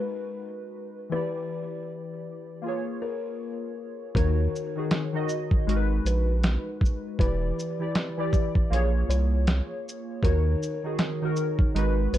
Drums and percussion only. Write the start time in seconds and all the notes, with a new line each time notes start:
4.15 kick, closed hi-hat
4.56 shaker
4.91 snare, closed hi-hat
5.29 shaker
5.51 kick
5.69 closed hi-hat
6.06 closed hi-hat, shaker
6.43 snare, closed hi-hat
6.81 kick
6.85 shaker
7.19 kick, closed hi-hat
7.59 shaker
7.95 snare, closed hi-hat
8.33 kick, shaker
8.55 kick
8.73 closed hi-hat
9.11 closed hi-hat, shaker
9.47 snare, closed hi-hat
9.89 shaker
10.23 kick, closed hi-hat
10.63 shaker
10.99 snare, closed hi-hat
11.36 shaker
11.59 kick
11.76 closed hi-hat
12.14 closed hi-hat, shaker